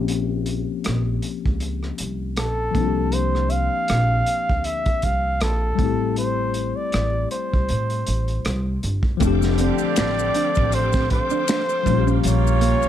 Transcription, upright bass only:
Already playing: A#1
0.87 A#1
1.46 C#2
2.00 C2
2.38 A#1
2.75 C2
3.90 A#1
4.50 D2
5.04 C2
5.42 A#1
5.79 A1
6.94 A1
7.54 C2
7.70 A2
8.08 A1
8.46 C2
8.84 G1
9.21 F1
9.80 muted upright bass stroke
9.98 A1
10.58 A1
11.87 A#1
12.25 A#1
12.84 muted upright bass stroke

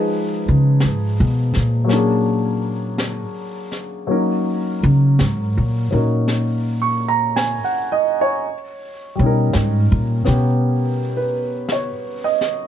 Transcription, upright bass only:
0.48 C#3
0.84 G#2
1.20 B2
1.56 A#2
4.83 C#3
5.20 G#2
5.57 A#2
5.92 A#2
9.19 B2
9.55 G#2
9.92 A#2
10.27 B2

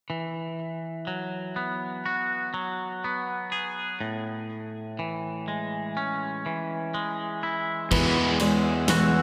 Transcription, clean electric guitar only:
0.10 E3
1.07 F#3
1.56 B3
2.06 F#4
2.54 F#3
3.04 B3
3.52 G#4
4.01 A2
4.99 E3
5.48 G#3
5.97 C#4
6.46 E3
6.94 G#3
7.43 E4
7.92 E3
8.41 G#3
8.90 F#4

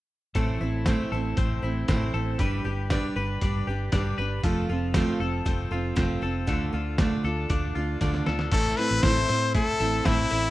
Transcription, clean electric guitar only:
0.36 A2 A4
0.61 E4
0.86 C4
1.12 A4
1.37 C4
1.63 E4
1.89 C4
2.14 A4
2.40 G3 B4
2.65 G4
2.91 D4
3.16 B4
3.42 D4
3.67 G4
3.93 D4
4.18 B4
4.44 F3 A4
4.70 F4
4.95 C4
5.20 A4
5.46 C4
5.72 F4
5.97 C4
6.23 A4
6.48 D3 A4
6.74 F4
6.99 D4
7.25 A4
7.50 D4
7.75 F4
8.01 D4
8.27 A4
8.52 A2
8.78 C4
9.03 E4
9.29 C4
9.55 E4
9.80 A4
10.05 C4
10.31 E4

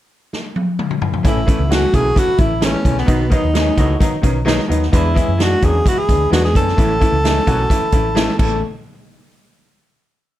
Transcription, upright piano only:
1.23 E3 A3 C#4 E4
1.46 E3 A3 C#4 E4
1.69 E3 A3 C#4 F#4
1.92 E3 A3 C#4 E4
2.15 E3 A3 C#4 E4
2.37 E3 A3 C#4 E4
2.61 E3 A3 C#4 E4
2.83 E3 A3 C#4 E4
3.06 D#3 F#3 B3 D#4
3.30 D#3 F#3 B3 D#4
3.53 D#3 F#3 B3 D#4
3.76 D#3 F#3 B3 D#4
4.00 D#3 F#3 B3 D#4
4.22 D#3 F#3 B3 C#4
4.45 D#3 F#3 B3 D#4
4.68 D#3 F#3 B3 D#4
4.91 E3 G#3 B3 D4
5.14 E3 G#3 B3 E4
5.37 E3 G#3 B3 E4
5.61 E3 G#3 B3 D4
5.84 E3 G#3 B3 E4
6.08 E3 G#3 B3 D4
6.30 E3 G#3 B3 D4
6.53 E3 G#3 B3 D4
6.77 E3 A3 C#4 E4
6.99 E3 A3 C#4 E4
7.23 E3 A3 C#4 E4
7.46 E3 A3 C#4 F#4
7.69 E3 A3 C#4 E4
7.93 E3 A3 C#4 E4
8.15 E3 A3 C#4 E4
8.39 E3 A3 C#4 E4

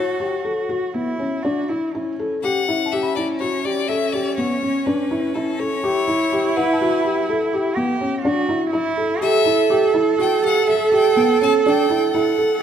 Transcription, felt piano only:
Already playing: F#4
0.20 G4
0.45 A4
0.69 F#4
0.94 B3
1.19 C#4
1.45 D4
1.69 E4
1.95 E4
2.19 A4
2.44 G4
2.68 E4
2.93 G4
3.17 E4
3.41 F#4
3.65 G4
3.89 A4
4.13 G4
4.38 B3
4.62 C#4
4.87 D4
5.11 E4
5.35 E4
5.59 A4
5.84 G4
6.08 E4
6.32 G4
6.57 E4
6.81 F#4
7.05 G4
7.29 A4
7.53 G4
7.77 B3
8.01 C#4
8.25 D4
8.49 E4
8.73 E4
8.97 A4
9.21 G4
9.46 E4
9.70 G4
9.94 E4
10.18 F#4
10.43 G4
10.68 A4
10.92 G4
11.16 B3
11.41 C#4
11.66 D4
11.90 E4
12.14 E4
12.38 A4

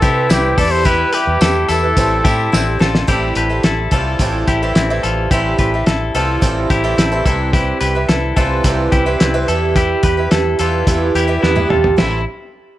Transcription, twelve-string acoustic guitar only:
Already playing: E3
0.02 G3 C4 E4 B4
0.29 G3 C4 E4 B4
0.58 G3 E4 G4 B4
0.84 E3 G3 E4 G4 B4
1.69 G3 E4 G4 B4
1.83 E4 G4 B4
1.97 A2 E3 G3 C4 E4 A4
2.25 G3 C4 E4 A4
2.52 G3 C4 E4 A4
2.79 G3 C4 E4 A4
3.07 A2 E3 G3 C4 E4 A4
3.49 G3 C4 E4 A4
3.92 A2 E3 G3 C4 E4 A4
4.20 A2 E3 G3 C4 E4 A4
4.63 A2 E3 G3 C4 E4 A4
4.90 A2 E3 G3 C4 E4 A4
5.32 A2 E3 G3 C4 E4 A4
5.74 G3 C4 E4 A4
6.15 A2 E3 G3 C4 E4 A4
6.41 A2 E3 G3 C4 E4 A4
6.84 A2 E3 G3 C4 E4 A4
7.12 A2 E3 G3 C4 E4 A4
7.26 C3 E3 G3 C4 E4 B4
7.95 G3 C4 E4 B4
8.36 C3 E3 G3 C4 E4 B4
8.64 C3 E3 G3 C4 E4 B4
9.06 C3 E3 G3 C4 E4 B4
9.34 C3 E3 G3 C4 E4 B4
9.48 E3 G3 E4 G4 B4
10.17 E4 G4 B4
10.60 E3 G3 E4 G4 B4
10.87 E3 G3 E4 G4 B4
11.27 E3 G3 E4 G4 B4
11.55 E3 G3 E4 G4 B4
11.96 A2 E3 G3 C4 E4 A4

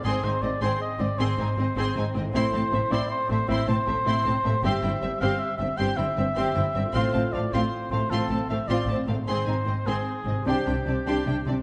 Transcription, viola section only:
0.04 C4
0.24 C4
0.43 C4
0.62 C4
1.00 C4
1.19 C4
1.39 C4
1.58 C4
1.77 C4
1.96 C4
2.15 C4
2.34 C4
2.53 C4
2.73 C4
2.91 C4
3.29 C4
3.48 C4
3.67 C4
3.87 C4
4.05 C4
4.26 C4
4.45 C4
4.64 C4
4.83 C4
5.03 C4
5.22 C4
5.59 C4
5.79 C4
5.98 C4
6.17 C4
6.36 C4
6.56 C4
6.76 C4
6.94 C4
7.14 C4
7.33 C4
7.53 C4
7.92 C4
8.12 C4
8.31 C4
8.50 C4
8.70 C4
8.90 C4
9.08 C4
9.28 C4
9.47 C4
9.66 C4
9.87 C4
10.26 C4
10.46 D4
10.67 D4
10.88 D4
11.07 D4
11.27 D4
11.48 D4

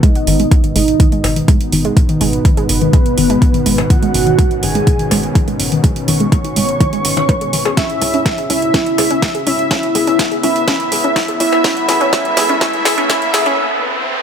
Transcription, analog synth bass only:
0.27 G#1
0.76 G#1
1.24 G#1
1.72 G#1
2.21 G#1
2.69 G#1
3.18 G#1
3.66 G#1
4.14 G#1
4.63 G#1
5.11 G#1
5.60 G#1
6.08 G#1
6.56 G#1
7.05 G#1
7.53 G#1
8.01 C#2
8.50 C#2
8.98 C#2
9.47 C#2
9.95 C#2
10.43 C#2
10.92 C#2
11.40 C#2
11.89 A1
12.37 A1
12.85 A1
13.34 A1

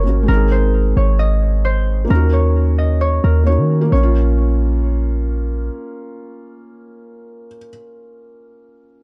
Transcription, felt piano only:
Already playing: A#3 C#4 F#4 A#4
0.03 A#3 C#4 F#4
0.09 A#4
0.23 G#3 C4
0.30 D#4 G#4
2.05 A#3 C#4
2.12 D#4 F#4
3.44 A#3 C#4 D#4
3.49 F#4
3.81 A#3
3.92 C#4
4.03 F4

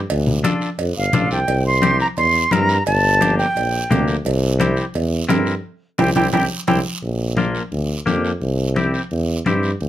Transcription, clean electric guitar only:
0.44 D4 F4 A4
1.14 D4 F4 A4
1.82 C4 E4 G4
2.52 C4 E4 A#4
3.21 A#3 D4 G4
3.91 A#3 D4 G4
4.60 C4 E4 G4
5.29 C4 E4 A#4
5.99 C4 E4 G4
6.16 C4 E4 G4
6.33 C4 E4 G4
6.68 C4 E4 G4
7.37 A#3 D4 F4
8.06 A#3 D4 G4
8.76 C4 E4 G4
9.46 C4 E4 G4

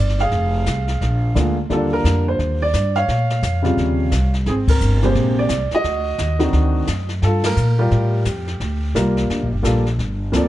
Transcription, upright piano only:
Already playing: D5
0.20 G#4 F5
1.35 D3 G#3 A#3 F4
1.70 D3 G3 A#3 F4 A4
1.74 D4
1.93 A#4
2.28 C5
2.62 D5
2.96 C#5 F5
3.62 C3 C#3 G3 F4
4.47 C4 G#4
4.69 A#4
5.02 C3 G#3 A#3 G4 C5
5.39 D5
5.74 F#4 D#5
6.39 D#3 C4 D4 F#4
7.23 F4 A4
7.45 A#4
7.78 G3 F4 G4 A#4
8.95 G3 A#3 F4 A#4
9.62 G3 A#3 F4 A4
10.32 F3 A#3 C4 A4
10.36 D5

